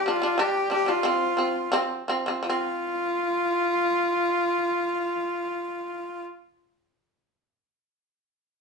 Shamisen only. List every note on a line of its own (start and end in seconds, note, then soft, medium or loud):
0.06 0.19 G3 medium
0.06 0.20 D4 medium
0.22 0.35 G3 medium
0.22 0.36 D4 medium
0.38 0.64 G3 medium
0.38 0.65 D4 loud
0.70 0.84 G3 medium
0.70 0.85 D4 medium
0.86 1.01 G3 medium
0.86 1.01 D4 medium
1.03 1.31 F3 medium
1.03 1.32 C4 medium
1.37 1.66 F3 medium
1.37 1.66 C4 medium
1.72 2.01 F3 loud
1.72 2.02 C4 loud
2.08 2.23 F3 medium
2.08 2.24 C4 medium
2.26 2.41 F3 medium
2.26 2.43 C4 medium
2.43 6.60 F3 medium
2.50 6.67 C4 medium